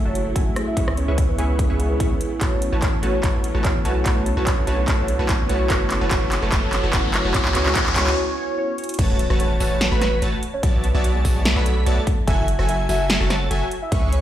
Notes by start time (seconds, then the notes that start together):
Already playing: F#3 A3 C#4 E4 F#4 G#4
0.05 F#1 F#3 F#4 A4 C#5 E5 A5
0.15 closed hi-hat
0.36 F#1 F#3 F#4 A4 E5 G#5, kick, closed hi-hat
0.55 A3 C#4 E4 G#4, cross-stick, closed hi-hat
0.67 E5
0.75 C#2 C#3 B3 C#4 E4 G#4 B4 E5 C#6, kick, closed hi-hat
0.79 G#4
0.88 cross-stick
0.97 C#5, closed hi-hat
1.08 C#2 C#4 G#4 B4 E5 C#6
1.18 kick, closed hi-hat
1.29 B4
1.37 C#2 B3 C#4 E4 G#4 B4 E5 C#6, closed hi-hat
1.59 G#4, kick, closed hi-hat
1.70 C#2 C#4 G#4 B4 E5 C#6
1.79 B3 C#4 E4 B4, closed hi-hat
1.88 B3 C#4 E4
1.93 C#5
2.00 C#4 G#4 B4 E5 C#6, kick, closed hi-hat
2.21 closed hi-hat
2.39 A1 F#3 A3 B3 C#4 E4 F#4 B4 C#5 A5, kick, clap, closed hi-hat, riser
2.62 closed hi-hat
2.73 A1 A3 F#4 B4 C#5 A5
2.82 C#5, kick, clap, closed hi-hat
3.01 A1 A3 B3 C#4 E4 F#4 B4 C#5 A5, closed hi-hat
3.23 A1 A3 C#4 F#4 B4 C#5 A5, kick, clap, closed hi-hat
3.44 closed hi-hat
3.55 A1 A3 F#4 B4 C#5 A5
3.65 C#5, kick, clap, closed hi-hat
3.83 B1 A3 B3 C#4 E4 F#4 B4 C#5 A5, closed hi-hat
3.87 F#4
4.04 D3 A3 B3 C#4 F#4 B4 C#5 A5, kick, clap, closed hi-hat
4.26 closed hi-hat
4.37 B1 A3 F#4 B4 C#5 A5
4.47 C#5, kick, clap, closed hi-hat
4.65 B1 A3 B3 C#4 E4 F#4 B4 C#5 A5, closed hi-hat
4.69 F#4
4.86 B1 A3 B3 C#4 F#4 B4 C#5 A5, kick, clap, closed hi-hat
5.08 closed hi-hat
5.19 B1 A3 F#4 B4 C#5 A5
5.29 C#5, kick, clap, closed hi-hat
5.47 B1 A3 B3 C#4 E4 F#4 B4 C#5 A5, closed hi-hat
5.51 F#4
5.68 F#1 F#3 A3 B3 C#4 E4 F#4 A4 B4 C#5 A5, kick, clap, closed hi-hat
5.72 F#4
5.91 clap, closed hi-hat
6.01 F#1 A3 F#4 B4 C#5 A5
6.09 F#1 A3 B3 C#4 F#4 B4 C#5, kick, clap, closed hi-hat
6.32 clap, closed hi-hat
6.42 F#1 A3 F#4 B4 C#5 A5
6.50 F#1 A3 B3 C#4 E4 F#4 B4 C#5 A5, kick, clap, closed hi-hat
6.73 clap, closed hi-hat
6.83 F#1 A3 F#4 B4 C#5 A5
6.91 F#1 A3 B3 C#4 E4 B4 C#5, kick, clap, closed hi-hat
6.95 F#4
7.14 clap, closed hi-hat
7.25 F#1 A3 F#4 B4 C#5 A5
7.32 C#2 C#3 B3 C#4 E4 F#4 B4 C#5 G#5, kick, clap, closed hi-hat
7.36 F#4
7.45 clap
7.53 C#2 G#3 B3 C#4 E4 F#4 B4 C#5 G#5, clap, closed hi-hat
7.66 clap
7.73 C#2 G#3 B3 C#4 E4 F#4 B4 C#5 G#5, kick, clap, closed hi-hat
7.77 F#4
7.86 clap
7.94 C#2 G#3 B3 C#4 E4 F#4 B4 C#5 G#5, clap, closed hi-hat
7.98 F#4
8.07 clap
8.16 C#5
8.37 C#5
8.58 C#5
8.78 C#5, closed hi-hat
8.84 closed hi-hat
8.89 closed hi-hat
8.94 closed hi-hat
8.99 A1 A3 F#4 B4 C#5 A5, kick, closed hi-hat, crash, impact
9.19 closed hi-hat
9.30 A1 A3 F#4 B4 C#5 A5, cross-stick
9.40 C#5, closed hi-hat
9.60 A1 A3 F#4 B4 C#5 A5, open hi-hat
9.81 snare, closed hi-hat
9.92 A1 A3 F#4 B4 C#5 B5
10.02 cross-stick, snare, closed hi-hat
10.22 A1 A3 F#4 B4 C#5 A5, closed hi-hat
10.43 closed hi-hat
10.54 C#5
10.63 B1 B3 F#4 C#5 D5 E5 A5, kick, closed hi-hat
10.84 B4, closed hi-hat
10.95 B1 B3 F#4 C#5 D5 E5 A5
11.04 closed hi-hat
11.15 G#4
11.25 B1 B3 F#4 C#5 D5 E5 A5, kick, open hi-hat
11.45 A4, snare, closed hi-hat
11.56 B1 B3 F#4 C#5 D5 E5 B5
11.66 closed hi-hat
11.86 B1 B3 F#4 C#5 D5 E5 A5, closed hi-hat
12.07 kick, closed hi-hat
12.27 F#1 F#3 F#4 A4 E5 G#5, kick, closed hi-hat
12.48 closed hi-hat
12.59 F#1 F#3 F#4 A4 E5 G#5, cross-stick
12.69 E5, closed hi-hat
12.89 F#1 F#3 F#4 A4 E5 G#5, open hi-hat
13.10 snare, closed hi-hat
13.21 F#1 F#3 F#4 A4 C#5 E5 A5
13.30 cross-stick, snare, closed hi-hat
13.51 F#1 F#3 F#4 A4 E5 G#5, closed hi-hat
13.71 closed hi-hat
13.82 E5
13.92 C#2 C#4 G#4 B4 E5 C#6, kick, closed hi-hat
14.12 C#5, closed hi-hat